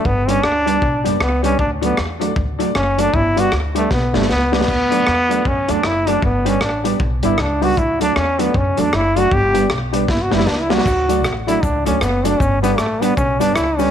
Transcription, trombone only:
0.06 0.31 B3 loud
0.29 0.45 C#4 loud
0.44 1.06 D4 loud
1.22 1.43 B3 loud
1.45 1.59 C#4 loud
1.60 1.70 D4 medium
1.84 1.98 B3 medium
2.76 3.02 C#4 loud
3.00 3.17 D4 loud
3.15 3.41 E4 loud
3.39 3.54 F#4 loud
3.78 3.91 A3 loud
3.93 4.17 B3 medium
4.16 4.30 A3 medium
4.31 4.52 B3 loud
4.55 5.49 B3 loud
5.48 5.73 C#4 medium
5.71 5.88 D4 loud
5.87 6.11 E4 loud
6.09 6.24 D4 loud
6.25 6.49 B3 medium
6.48 6.62 C#4 loud
6.63 6.84 D4 medium
7.25 7.42 E4 medium
7.40 7.65 D4 medium
7.64 7.80 F#4 loud
7.78 8.01 E4 loud
8.03 8.19 D4 loud
8.17 8.43 C#4 loud
8.41 8.59 B3 medium
8.57 8.82 C#4 medium
8.80 8.97 D4 loud
8.95 9.20 E4 loud
9.19 9.36 F#4 loud
9.35 9.72 G4 loud
10.09 10.24 E4 medium
10.22 10.35 F#4 medium
10.35 10.49 E4 medium
10.48 10.62 D4 medium
10.60 10.75 E4 medium
10.74 11.33 F#4 loud
11.48 11.64 E4 loud
11.63 11.87 D4 medium
11.87 12.03 C#4 medium
12.02 12.28 B3 medium
12.27 12.41 D4 loud
12.40 12.62 C#4 loud
12.62 12.79 B3 loud
12.78 13.03 A3 medium
13.02 13.16 B3 loud
13.17 13.41 C#4 medium
13.40 13.57 D4 loud
13.55 13.80 E4 loud
13.78 13.91 C#4 loud

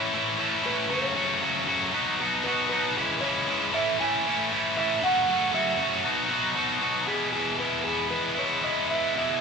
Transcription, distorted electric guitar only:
0.00 0.11 A2 medium
0.00 0.13 E3 medium
0.00 0.12 A3 loud
0.00 0.12 C#4 medium
0.00 0.14 E4 loud
0.13 0.36 A2 medium
0.13 0.37 E3 medium
0.13 0.38 A3 medium
0.13 0.38 C#4 medium
0.13 0.39 E4 medium
0.37 0.60 A2 medium
0.37 0.62 E3 medium
0.37 0.61 A3 medium
0.37 0.62 C#4 loud
0.37 0.63 E4 medium
0.62 0.87 A2 medium
0.62 0.89 E3 medium
0.62 0.88 A3 medium
0.62 0.88 C#4 medium
0.62 0.91 E4 medium
0.88 1.13 F#2 medium
0.88 1.14 C#3 medium
0.88 1.15 F#3 medium
0.88 1.15 A3 loud
0.88 1.15 C#4 loud
0.88 1.16 F#4 loud
1.15 1.39 F#2 medium
1.15 1.40 C#3 medium
1.15 1.41 F#3 medium
1.15 1.41 A3 medium
1.15 1.41 C#4 medium
1.15 1.43 F#4 medium
1.41 1.66 F#2 medium
1.41 1.66 C#3 medium
1.41 1.67 F#3 medium
1.41 1.67 A3 medium
1.41 1.68 C#4 medium
1.41 1.68 F#4 medium
1.67 1.91 F#2 medium
1.67 1.91 C#3 loud
1.67 1.92 F#3 medium
1.67 1.92 A3 loud
1.67 1.92 C#4 loud
1.67 1.92 F#4 medium
1.93 2.19 B2 medium
1.93 2.19 F#3 loud
1.93 2.20 B3 medium
1.93 2.20 D#4 loud
1.93 2.21 F#4 medium
2.20 2.44 B2 medium
2.20 2.45 F#3 medium
2.20 2.46 B3 medium
2.20 2.46 D#4 medium
2.20 2.47 F#4 medium
2.45 2.71 B2 medium
2.45 2.71 F#3 medium
2.45 2.71 B3 medium
2.45 2.72 D#4 loud
2.45 2.72 F#4 loud
2.72 2.95 B2 medium
2.72 2.95 F#3 medium
2.72 2.96 B3 medium
2.72 2.96 D#4 medium
2.72 2.96 F#4 medium
2.97 3.20 C#3 loud
2.97 3.21 E3 loud
2.97 3.22 G#3 loud
2.97 3.22 C#4 medium
2.97 3.24 E4 loud
3.21 3.46 C#3 medium
3.21 3.48 E3 medium
3.21 3.48 G#3 medium
3.21 3.48 C#4 medium
3.21 3.50 E4 medium
3.48 3.72 C#3 medium
3.48 3.73 E3 medium
3.48 3.72 G#3 medium
3.48 3.72 C#4 medium
3.48 3.74 E4 medium
3.72 3.97 A2 loud
3.72 3.99 E3 medium
3.72 3.98 A3 loud
3.72 3.99 C#4 loud
3.72 4.00 E4 loud
3.98 4.24 A2 medium
3.98 4.26 E3 medium
3.98 4.26 A3 medium
3.98 4.26 C#4 loud
3.98 4.28 E4 loud
4.25 4.51 A2 medium
4.25 4.51 E3 medium
4.25 4.52 A3 medium
4.25 4.52 C#4 medium
4.25 4.53 E4 medium
4.52 4.75 A2 medium
4.52 4.77 E3 loud
4.52 4.76 A3 loud
4.52 4.77 C#4 loud
4.52 4.78 E4 loud
4.76 5.00 A2 medium
4.76 5.03 E3 medium
4.76 5.01 A3 loud
4.76 5.01 C#4 medium
4.76 5.04 E4 loud
5.02 5.27 F#2 medium
5.02 5.27 C#3 medium
5.02 5.28 F#3 loud
5.02 5.28 A3 loud
5.02 5.28 C#4 loud
5.02 5.29 F#4 loud
5.28 5.51 F#2 medium
5.28 5.51 C#3 medium
5.28 5.52 F#3 medium
5.28 5.53 A3 medium
5.28 5.53 C#4 medium
5.28 5.54 F#4 medium
5.52 5.75 F#2 medium
5.52 5.76 C#3 medium
5.52 5.77 F#3 medium
5.52 5.78 A3 medium
5.52 5.78 C#4 medium
5.52 5.79 F#4 medium
5.77 6.02 F#2 medium
5.77 6.02 C#3 medium
5.77 6.02 F#3 medium
5.77 6.03 A3 medium
5.77 6.03 C#4 loud
5.77 6.04 F#4 medium
6.03 6.28 B2 loud
6.03 6.29 F#3 medium
6.03 6.29 B3 loud
6.03 6.30 D#4 loud
6.03 6.30 F#4 loud
6.29 6.54 B2 medium
6.29 6.55 F#3 medium
6.29 6.55 B3 medium
6.29 6.55 D#4 medium
6.29 6.56 F#4 loud
6.55 6.80 B2 medium
6.55 6.81 F#3 medium
6.55 6.81 B3 loud
6.55 6.82 D#4 medium
6.55 6.82 F#4 loud
6.82 7.05 B2 medium
6.82 7.06 F#3 medium
6.82 7.07 B3 medium
6.82 7.07 D#4 medium
6.82 7.07 F#4 medium
7.06 7.58 E2 medium
7.06 7.58 B2 loud
7.06 7.35 E3 medium
7.06 7.34 G#3 medium
7.06 7.34 B3 medium
7.06 7.32 E4 medium
7.33 7.59 E3 soft
7.33 7.60 G#3 medium
7.33 7.60 B3 medium
7.33 7.61 E4 medium
7.58 9.14 E2 medium
7.58 8.11 B2 medium
7.58 7.88 E3 medium
7.58 7.87 G#3 medium
7.58 7.86 B3 medium
7.58 7.85 E4 medium
7.85 8.37 E3 medium
7.85 8.37 G#3 medium
7.85 8.35 B3 medium
7.85 8.35 E4 medium
8.35 8.61 E3 medium
8.35 8.63 G#3 medium
8.35 8.63 B3 medium
8.35 8.64 E4 medium
8.62 9.16 E3 medium
8.62 9.16 G#3 medium
8.62 9.16 B3 medium
8.62 9.17 E4 medium
9.15 9.41 E2 medium
9.15 9.41 B2 medium
9.15 9.41 E3 medium
9.15 9.41 G#3 medium
9.15 9.41 B3 medium
9.15 9.40 E4 medium

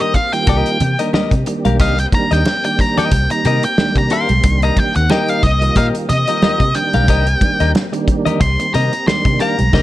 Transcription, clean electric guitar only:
0.00 0.12 G4 medium
0.00 0.13 A#4 loud
0.14 muted clean electric guitar stroke soft
0.33 muted clean electric guitar stroke soft
0.48 0.69 G4 medium
0.48 0.69 A#4 medium
0.48 0.70 D#5 medium
0.81 muted clean electric guitar stroke soft
0.99 1.11 G4 soft
0.99 1.11 A#4 medium
0.99 1.10 D#5 medium
1.13 1.32 G4 medium
1.13 1.32 A#4 medium
1.13 1.32 D#5 medium
1.47 muted clean electric guitar stroke soft
1.65 1.77 G4 medium
1.65 1.77 A#4 medium
1.65 1.76 F5 medium
1.80 1.98 G4 medium
1.80 1.98 A#4 medium
1.80 1.97 D#5 loud
1.98 muted clean electric guitar stroke soft
2.13 muted clean electric guitar stroke soft
2.31 2.43 G4 soft
2.31 2.43 A#4 medium
2.31 2.42 D#5 medium
2.47 muted clean electric guitar stroke soft
2.65 muted clean electric guitar stroke soft
2.98 3.11 G4 medium
2.98 3.11 A#4 medium
2.98 3.12 D#5 medium
3.12 muted clean electric guitar stroke soft
3.31 muted clean electric guitar stroke medium
3.45 3.63 G4 medium
3.45 3.64 A#4 medium
3.45 3.63 D#5 medium
3.64 muted clean electric guitar stroke medium
3.97 muted clean electric guitar stroke medium
4.11 4.33 G4 medium
4.11 4.31 A#4 loud
4.11 4.30 F5 loud
4.30 muted clean electric guitar stroke soft
4.45 muted clean electric guitar stroke soft
4.63 4.77 G4 medium
4.63 4.77 A#4 medium
4.63 4.77 D#5 medium
4.78 muted clean electric guitar stroke soft
4.96 muted clean electric guitar stroke soft
5.10 5.41 G4 loud
5.10 5.41 A#4 medium
5.10 5.42 D#5 medium
5.62 muted clean electric guitar stroke medium
5.77 5.95 G4 medium
5.77 5.95 A#4 medium
5.77 5.96 D#5 medium
6.10 muted clean electric guitar stroke soft
6.28 6.40 G4 medium
6.28 6.40 A#4 medium
6.28 6.39 D#5 medium
6.42 6.61 G4 medium
6.42 6.61 A#4 medium
6.42 6.62 D#5 loud
6.76 muted clean electric guitar stroke soft
6.94 7.06 G4 medium
6.94 7.06 A#4 medium
6.94 7.05 F5 medium
7.08 7.27 G4 medium
7.08 7.27 A#4 medium
7.08 7.26 D#5 loud
7.28 muted clean electric guitar stroke soft
7.42 muted clean electric guitar stroke soft
7.60 7.72 G4 medium
7.60 7.72 A#4 medium
7.60 7.72 D#5 medium
7.76 muted clean electric guitar stroke soft
7.93 muted clean electric guitar stroke medium
8.25 8.40 G4 medium
8.25 8.41 A#4 medium
8.25 8.40 D#5 medium
8.60 muted clean electric guitar stroke soft
8.74 8.93 G4 medium
8.74 8.93 A#4 medium
8.74 8.92 D#5 loud
8.93 muted clean electric guitar stroke soft
9.26 muted clean electric guitar stroke medium
9.41 9.59 G4 medium
9.41 9.59 A#4 loud
9.41 9.59 F5 loud
9.59 muted clean electric guitar stroke soft
9.74 9.82 G4 medium
9.74 9.82 A#4 loud
9.74 9.82 D#5 medium

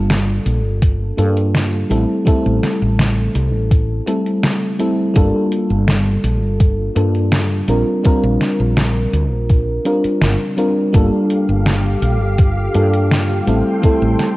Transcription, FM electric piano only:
0.00 1.13 G3 medium
0.00 1.14 A#3 medium
0.00 1.14 D4 medium
0.00 1.14 F4 medium
0.00 1.15 A4 medium
1.17 1.86 G3 medium
1.17 1.86 A#3 medium
1.17 1.86 D4 medium
1.17 1.86 F4 medium
1.17 1.87 A4 medium
1.90 2.22 G3 medium
1.90 2.22 A3 medium
1.90 2.23 C4 medium
1.90 2.23 E4 medium
1.90 2.23 A4 medium
2.25 4.02 G3 medium
2.25 4.03 A3 medium
2.25 4.03 C4 medium
2.25 4.03 E4 medium
2.25 4.04 A4 loud
4.07 4.75 G3 medium
4.07 4.75 A3 medium
4.07 4.75 C4 medium
4.07 4.76 E4 medium
4.07 4.76 A4 medium
4.79 5.11 G3 medium
4.79 5.11 A3 medium
4.79 5.12 C4 medium
4.79 5.12 E4 medium
4.79 5.12 A4 medium
5.14 6.91 G3 medium
5.14 6.92 A#3 medium
5.14 6.92 D4 medium
5.14 6.93 F4 medium
5.14 6.93 A4 loud
6.96 7.64 G3 medium
6.96 7.64 A#3 medium
6.96 7.65 D4 medium
6.96 7.65 F4 medium
6.96 7.65 A4 medium
7.68 8.00 G3 medium
7.68 8.01 C4 medium
7.68 8.01 D4 medium
7.68 8.01 F4 medium
7.68 8.01 A#4 medium
8.03 9.81 G3 medium
8.03 9.81 C4 medium
8.03 9.81 D4 medium
8.03 9.82 F4 medium
8.03 9.82 A#4 loud
9.85 10.53 G3 medium
9.85 10.53 C4 medium
9.85 10.54 D4 medium
9.85 10.54 F4 medium
9.85 10.54 A#4 medium
10.57 10.89 G3 medium
10.57 10.90 C4 medium
10.57 10.90 D4 medium
10.57 10.90 F4 medium
10.57 10.90 A#4 medium
10.93 12.70 G3 loud
10.93 12.70 A#3 medium
10.93 12.71 D4 medium
10.93 12.71 F4 medium
10.93 12.71 A4 loud
12.74 13.43 G3 medium
12.74 13.43 A#3 medium
12.74 13.43 D4 medium
12.74 13.43 F4 medium
12.74 13.43 A4 medium
13.46 13.79 G3 medium
13.46 13.79 A3 medium
13.46 13.79 C4 medium
13.46 13.79 E4 medium
13.46 13.80 A4 medium
13.82 14.37 G3 medium
13.82 14.37 A3 medium
13.82 14.37 C4 medium
13.82 14.37 E4 medium
13.82 14.37 A4 loud

